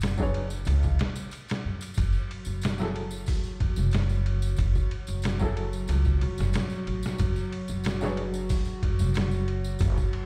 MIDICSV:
0, 0, Header, 1, 5, 480
1, 0, Start_track
1, 0, Tempo, 652174
1, 1454, Time_signature, 4, 2, 24, 8
1, 7550, End_track
2, 0, Start_track
2, 0, Title_t, "Upright piano"
2, 0, Program_c, 0, 0
2, 128, Note_on_c, 0, 54, 80
2, 139, Note_on_c, 0, 62, 76
2, 144, Note_on_c, 0, 68, 72
2, 154, Note_on_c, 0, 71, 69
2, 165, Note_on_c, 0, 73, 85
2, 260, Note_off_c, 0, 54, 0
2, 266, Note_off_c, 0, 62, 0
2, 268, Note_off_c, 0, 68, 0
2, 273, Note_off_c, 0, 71, 0
2, 279, Note_off_c, 0, 73, 0
2, 2049, Note_on_c, 0, 54, 70
2, 2059, Note_on_c, 0, 64, 67
2, 2072, Note_on_c, 0, 68, 62
2, 2082, Note_on_c, 0, 69, 78
2, 2180, Note_off_c, 0, 54, 0
2, 2185, Note_off_c, 0, 64, 0
2, 2192, Note_off_c, 0, 68, 0
2, 2197, Note_off_c, 0, 69, 0
2, 3969, Note_on_c, 0, 54, 86
2, 3979, Note_on_c, 0, 64, 72
2, 3989, Note_on_c, 0, 68, 73
2, 4004, Note_on_c, 0, 69, 92
2, 4100, Note_off_c, 0, 54, 0
2, 4106, Note_off_c, 0, 64, 0
2, 4111, Note_off_c, 0, 68, 0
2, 4118, Note_off_c, 0, 69, 0
2, 5891, Note_on_c, 0, 54, 72
2, 5901, Note_on_c, 0, 62, 70
2, 5907, Note_on_c, 0, 68, 69
2, 5917, Note_on_c, 0, 71, 66
2, 5924, Note_on_c, 0, 73, 82
2, 6022, Note_off_c, 0, 54, 0
2, 6027, Note_off_c, 0, 62, 0
2, 6030, Note_off_c, 0, 68, 0
2, 6035, Note_off_c, 0, 71, 0
2, 6038, Note_off_c, 0, 73, 0
2, 7550, End_track
3, 0, Start_track
3, 0, Title_t, "Ambient pad"
3, 0, Program_c, 1, 92
3, 1453, Note_on_c, 1, 54, 83
3, 1453, Note_on_c, 1, 66, 80
3, 7550, Note_off_c, 1, 54, 0
3, 7550, Note_off_c, 1, 66, 0
3, 7550, End_track
4, 0, Start_track
4, 0, Title_t, "Upright bass"
4, 0, Program_c, 2, 32
4, 0, Note_on_c, 2, 30, 82
4, 470, Note_off_c, 2, 30, 0
4, 490, Note_on_c, 2, 37, 107
4, 705, Note_off_c, 2, 37, 0
4, 1215, Note_on_c, 2, 42, 71
4, 1427, Note_off_c, 2, 42, 0
4, 1454, Note_on_c, 2, 30, 92
4, 1565, Note_off_c, 2, 30, 0
4, 1815, Note_on_c, 2, 30, 82
4, 2390, Note_off_c, 2, 30, 0
4, 2653, Note_on_c, 2, 42, 84
4, 2779, Note_on_c, 2, 30, 93
4, 2790, Note_off_c, 2, 42, 0
4, 3352, Note_off_c, 2, 30, 0
4, 3375, Note_on_c, 2, 30, 93
4, 3486, Note_off_c, 2, 30, 0
4, 3742, Note_on_c, 2, 30, 81
4, 4313, Note_off_c, 2, 30, 0
4, 4335, Note_on_c, 2, 37, 103
4, 4547, Note_off_c, 2, 37, 0
4, 4579, Note_on_c, 2, 42, 99
4, 4688, Note_off_c, 2, 42, 0
4, 4703, Note_on_c, 2, 30, 84
4, 4802, Note_off_c, 2, 30, 0
4, 5057, Note_on_c, 2, 33, 81
4, 5167, Note_off_c, 2, 33, 0
4, 5294, Note_on_c, 2, 30, 95
4, 5405, Note_off_c, 2, 30, 0
4, 5663, Note_on_c, 2, 30, 82
4, 6234, Note_off_c, 2, 30, 0
4, 6495, Note_on_c, 2, 42, 85
4, 6623, Note_on_c, 2, 30, 87
4, 6634, Note_off_c, 2, 42, 0
4, 7194, Note_off_c, 2, 30, 0
4, 7216, Note_on_c, 2, 30, 101
4, 7327, Note_off_c, 2, 30, 0
4, 7550, End_track
5, 0, Start_track
5, 0, Title_t, "Drums"
5, 6, Note_on_c, 9, 54, 63
5, 13, Note_on_c, 9, 51, 75
5, 25, Note_on_c, 9, 38, 104
5, 79, Note_off_c, 9, 54, 0
5, 87, Note_off_c, 9, 51, 0
5, 98, Note_off_c, 9, 38, 0
5, 130, Note_on_c, 9, 54, 33
5, 140, Note_on_c, 9, 36, 85
5, 203, Note_off_c, 9, 54, 0
5, 214, Note_off_c, 9, 36, 0
5, 252, Note_on_c, 9, 51, 64
5, 326, Note_off_c, 9, 51, 0
5, 369, Note_on_c, 9, 54, 71
5, 443, Note_off_c, 9, 54, 0
5, 479, Note_on_c, 9, 54, 60
5, 495, Note_on_c, 9, 51, 89
5, 552, Note_off_c, 9, 54, 0
5, 568, Note_off_c, 9, 51, 0
5, 610, Note_on_c, 9, 54, 35
5, 620, Note_on_c, 9, 36, 92
5, 684, Note_off_c, 9, 54, 0
5, 693, Note_off_c, 9, 36, 0
5, 730, Note_on_c, 9, 51, 76
5, 742, Note_on_c, 9, 38, 99
5, 804, Note_off_c, 9, 51, 0
5, 816, Note_off_c, 9, 38, 0
5, 851, Note_on_c, 9, 54, 75
5, 924, Note_off_c, 9, 54, 0
5, 967, Note_on_c, 9, 54, 68
5, 977, Note_on_c, 9, 51, 62
5, 1040, Note_off_c, 9, 54, 0
5, 1050, Note_off_c, 9, 51, 0
5, 1093, Note_on_c, 9, 54, 40
5, 1101, Note_on_c, 9, 51, 72
5, 1113, Note_on_c, 9, 38, 95
5, 1166, Note_off_c, 9, 54, 0
5, 1175, Note_off_c, 9, 51, 0
5, 1187, Note_off_c, 9, 38, 0
5, 1331, Note_on_c, 9, 54, 76
5, 1342, Note_on_c, 9, 51, 59
5, 1404, Note_off_c, 9, 54, 0
5, 1415, Note_off_c, 9, 51, 0
5, 1429, Note_on_c, 9, 54, 62
5, 1454, Note_on_c, 9, 51, 88
5, 1455, Note_on_c, 9, 36, 102
5, 1502, Note_off_c, 9, 54, 0
5, 1528, Note_off_c, 9, 36, 0
5, 1528, Note_off_c, 9, 51, 0
5, 1566, Note_on_c, 9, 54, 36
5, 1640, Note_off_c, 9, 54, 0
5, 1699, Note_on_c, 9, 51, 66
5, 1773, Note_off_c, 9, 51, 0
5, 1802, Note_on_c, 9, 54, 68
5, 1876, Note_off_c, 9, 54, 0
5, 1925, Note_on_c, 9, 54, 61
5, 1938, Note_on_c, 9, 51, 80
5, 1950, Note_on_c, 9, 38, 114
5, 1998, Note_off_c, 9, 54, 0
5, 2012, Note_off_c, 9, 51, 0
5, 2024, Note_off_c, 9, 38, 0
5, 2047, Note_on_c, 9, 54, 39
5, 2073, Note_on_c, 9, 38, 44
5, 2120, Note_off_c, 9, 54, 0
5, 2147, Note_off_c, 9, 38, 0
5, 2176, Note_on_c, 9, 51, 61
5, 2249, Note_off_c, 9, 51, 0
5, 2286, Note_on_c, 9, 54, 71
5, 2360, Note_off_c, 9, 54, 0
5, 2402, Note_on_c, 9, 54, 58
5, 2413, Note_on_c, 9, 36, 100
5, 2413, Note_on_c, 9, 46, 79
5, 2475, Note_off_c, 9, 54, 0
5, 2487, Note_off_c, 9, 36, 0
5, 2487, Note_off_c, 9, 46, 0
5, 2528, Note_on_c, 9, 54, 34
5, 2601, Note_off_c, 9, 54, 0
5, 2652, Note_on_c, 9, 51, 65
5, 2653, Note_on_c, 9, 36, 88
5, 2726, Note_off_c, 9, 36, 0
5, 2726, Note_off_c, 9, 51, 0
5, 2769, Note_on_c, 9, 54, 72
5, 2843, Note_off_c, 9, 54, 0
5, 2880, Note_on_c, 9, 54, 56
5, 2892, Note_on_c, 9, 51, 83
5, 2904, Note_on_c, 9, 38, 108
5, 2954, Note_off_c, 9, 54, 0
5, 2966, Note_off_c, 9, 51, 0
5, 2977, Note_off_c, 9, 38, 0
5, 3013, Note_on_c, 9, 54, 39
5, 3086, Note_off_c, 9, 54, 0
5, 3135, Note_on_c, 9, 51, 64
5, 3209, Note_off_c, 9, 51, 0
5, 3254, Note_on_c, 9, 54, 82
5, 3327, Note_off_c, 9, 54, 0
5, 3360, Note_on_c, 9, 54, 55
5, 3375, Note_on_c, 9, 36, 104
5, 3375, Note_on_c, 9, 51, 82
5, 3434, Note_off_c, 9, 54, 0
5, 3448, Note_off_c, 9, 36, 0
5, 3449, Note_off_c, 9, 51, 0
5, 3495, Note_on_c, 9, 54, 37
5, 3501, Note_on_c, 9, 36, 85
5, 3569, Note_off_c, 9, 54, 0
5, 3575, Note_off_c, 9, 36, 0
5, 3615, Note_on_c, 9, 51, 62
5, 3689, Note_off_c, 9, 51, 0
5, 3731, Note_on_c, 9, 54, 65
5, 3741, Note_on_c, 9, 51, 39
5, 3805, Note_off_c, 9, 54, 0
5, 3814, Note_off_c, 9, 51, 0
5, 3842, Note_on_c, 9, 54, 56
5, 3854, Note_on_c, 9, 51, 85
5, 3866, Note_on_c, 9, 38, 106
5, 3916, Note_off_c, 9, 54, 0
5, 3928, Note_off_c, 9, 51, 0
5, 3939, Note_off_c, 9, 38, 0
5, 3971, Note_on_c, 9, 54, 36
5, 3981, Note_on_c, 9, 36, 84
5, 4044, Note_off_c, 9, 54, 0
5, 4055, Note_off_c, 9, 36, 0
5, 4098, Note_on_c, 9, 51, 62
5, 4172, Note_off_c, 9, 51, 0
5, 4217, Note_on_c, 9, 54, 69
5, 4291, Note_off_c, 9, 54, 0
5, 4325, Note_on_c, 9, 54, 54
5, 4334, Note_on_c, 9, 51, 85
5, 4398, Note_off_c, 9, 54, 0
5, 4407, Note_off_c, 9, 51, 0
5, 4451, Note_on_c, 9, 54, 30
5, 4460, Note_on_c, 9, 36, 88
5, 4524, Note_off_c, 9, 54, 0
5, 4534, Note_off_c, 9, 36, 0
5, 4573, Note_on_c, 9, 51, 65
5, 4647, Note_off_c, 9, 51, 0
5, 4694, Note_on_c, 9, 54, 69
5, 4714, Note_on_c, 9, 38, 45
5, 4768, Note_off_c, 9, 54, 0
5, 4788, Note_off_c, 9, 38, 0
5, 4806, Note_on_c, 9, 54, 59
5, 4813, Note_on_c, 9, 51, 85
5, 4825, Note_on_c, 9, 38, 117
5, 4879, Note_off_c, 9, 54, 0
5, 4886, Note_off_c, 9, 51, 0
5, 4898, Note_off_c, 9, 38, 0
5, 4929, Note_on_c, 9, 54, 37
5, 5002, Note_off_c, 9, 54, 0
5, 5057, Note_on_c, 9, 51, 63
5, 5131, Note_off_c, 9, 51, 0
5, 5172, Note_on_c, 9, 54, 70
5, 5195, Note_on_c, 9, 38, 55
5, 5246, Note_off_c, 9, 54, 0
5, 5269, Note_off_c, 9, 38, 0
5, 5287, Note_on_c, 9, 54, 62
5, 5295, Note_on_c, 9, 51, 89
5, 5296, Note_on_c, 9, 36, 102
5, 5361, Note_off_c, 9, 54, 0
5, 5369, Note_off_c, 9, 51, 0
5, 5370, Note_off_c, 9, 36, 0
5, 5417, Note_on_c, 9, 54, 33
5, 5491, Note_off_c, 9, 54, 0
5, 5538, Note_on_c, 9, 51, 68
5, 5612, Note_off_c, 9, 51, 0
5, 5652, Note_on_c, 9, 54, 72
5, 5726, Note_off_c, 9, 54, 0
5, 5767, Note_on_c, 9, 54, 60
5, 5775, Note_on_c, 9, 51, 82
5, 5787, Note_on_c, 9, 38, 105
5, 5841, Note_off_c, 9, 54, 0
5, 5848, Note_off_c, 9, 51, 0
5, 5860, Note_off_c, 9, 38, 0
5, 5895, Note_on_c, 9, 54, 38
5, 5914, Note_on_c, 9, 38, 45
5, 5969, Note_off_c, 9, 54, 0
5, 5988, Note_off_c, 9, 38, 0
5, 6014, Note_on_c, 9, 51, 60
5, 6088, Note_off_c, 9, 51, 0
5, 6136, Note_on_c, 9, 54, 67
5, 6210, Note_off_c, 9, 54, 0
5, 6250, Note_on_c, 9, 54, 65
5, 6255, Note_on_c, 9, 46, 75
5, 6256, Note_on_c, 9, 36, 108
5, 6323, Note_off_c, 9, 54, 0
5, 6329, Note_off_c, 9, 46, 0
5, 6330, Note_off_c, 9, 36, 0
5, 6367, Note_on_c, 9, 54, 32
5, 6441, Note_off_c, 9, 54, 0
5, 6496, Note_on_c, 9, 36, 96
5, 6497, Note_on_c, 9, 51, 68
5, 6570, Note_off_c, 9, 36, 0
5, 6571, Note_off_c, 9, 51, 0
5, 6617, Note_on_c, 9, 54, 78
5, 6691, Note_off_c, 9, 54, 0
5, 6728, Note_on_c, 9, 54, 60
5, 6737, Note_on_c, 9, 51, 83
5, 6749, Note_on_c, 9, 38, 112
5, 6801, Note_off_c, 9, 54, 0
5, 6811, Note_off_c, 9, 51, 0
5, 6823, Note_off_c, 9, 38, 0
5, 6854, Note_on_c, 9, 54, 37
5, 6927, Note_off_c, 9, 54, 0
5, 6977, Note_on_c, 9, 51, 60
5, 7050, Note_off_c, 9, 51, 0
5, 7098, Note_on_c, 9, 54, 70
5, 7172, Note_off_c, 9, 54, 0
5, 7204, Note_on_c, 9, 54, 64
5, 7217, Note_on_c, 9, 36, 107
5, 7218, Note_on_c, 9, 51, 86
5, 7278, Note_off_c, 9, 54, 0
5, 7291, Note_off_c, 9, 36, 0
5, 7291, Note_off_c, 9, 51, 0
5, 7342, Note_on_c, 9, 36, 88
5, 7343, Note_on_c, 9, 54, 36
5, 7416, Note_off_c, 9, 36, 0
5, 7416, Note_off_c, 9, 54, 0
5, 7456, Note_on_c, 9, 51, 65
5, 7530, Note_off_c, 9, 51, 0
5, 7550, End_track
0, 0, End_of_file